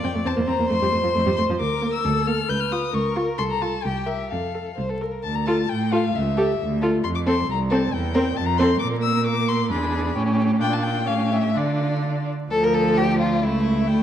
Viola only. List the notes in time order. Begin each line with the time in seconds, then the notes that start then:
0.04 C4
0.15 A3
0.25 C4
0.37 A#3
0.47 C4
0.59 A#3
0.70 A3
0.82 G3
0.92 A3
1.03 F3
1.15 A3
1.26 G3
1.38 A3
1.50 F3
1.82 A#3
2.27 A#3
2.72 F4
3.16 F4
3.62 F4
4.06 A#4
4.55 A4
5.01 A4
5.47 F4
5.92 F4
6.37 G4
6.82 F4
7.27 C4
7.72 C4
8.15 C4
8.59 C4
8.81 A#3
9.71 D4
10.17 C#4
10.61 D4
11.08 C#4
11.56 D4
12.52 F3
13.44 A3
13.89 A3